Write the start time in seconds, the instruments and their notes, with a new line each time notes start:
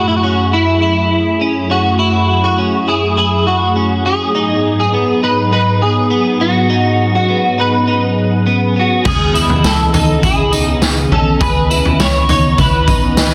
Already playing: analog synth pad F#2 F#3 A3 E4 G#4, clean electric guitar E4
0.08 clean electric guitar E4
0.16 clean electric guitar F#4
0.23 clean electric guitar C#4 F#4
0.53 clean electric guitar E4
0.82 clean electric guitar E4
1.41 clean electric guitar C#4
1.70 clean electric guitar C#4 F#4
1.99 clean electric guitar E4
2.44 clean electric guitar F#4
2.58 clean electric guitar C#4
2.88 clean electric guitar E4 G#4
3.17 clean electric guitar E4 G#4
3.47 clean electric guitar F#4
3.76 clean electric guitar C#4
4.06 clean electric guitar C#4 G#4
4.34 analog synth pad G#2 F#3 B3 D#4, clean electric guitar D#4
4.80 clean electric guitar G#4
4.94 clean electric guitar B3
5.23 clean electric guitar D#4 B4
5.52 clean electric guitar D#4 B4
5.82 clean electric guitar G#4
6.10 clean electric guitar B3
6.40 clean electric guitar B3 F#4
6.70 analog synth pad C#4, clean electric guitar D#4
7.15 clean electric guitar F#4
7.29 clean electric guitar B3
7.58 clean electric guitar D#4 B4
7.87 clean electric guitar D#4
8.46 clean electric guitar B3
8.76 clean electric guitar B3 F#4
9.05 analog synth bass C#2, analog synth pad C#3 E3 B3 C#4 D#5, clean electric guitar G#4, kick, floor tom, crash, tambourine
9.34 clean electric guitar E4, tambourine
9.50 floor tom
9.64 analog synth bass C#2, clean electric guitar A4, snare, tambourine
9.94 clean electric guitar D#4, floor tom, tambourine
10.23 clean electric guitar E4 G#4, kick, floor tom, tambourine
10.52 clean electric guitar D#4, tambourine
10.82 snare, tambourine
11.12 analog synth bass B1, clean electric guitar C#4 A4, floor tom
11.40 analog synth bass C#2, clean electric guitar G#4 B4, kick, floor tom, tambourine
11.70 clean electric guitar E4, tambourine
11.85 floor tom
12.00 analog synth bass C#2, clean electric guitar C#5, snare, tambourine
12.29 clean electric guitar D#4 C#5, floor tom, tambourine
12.58 analog synth bass C#2, clean electric guitar E4 B4, kick, floor tom, tambourine
12.88 clean electric guitar D#4, kick, tambourine
13.17 snare, tambourine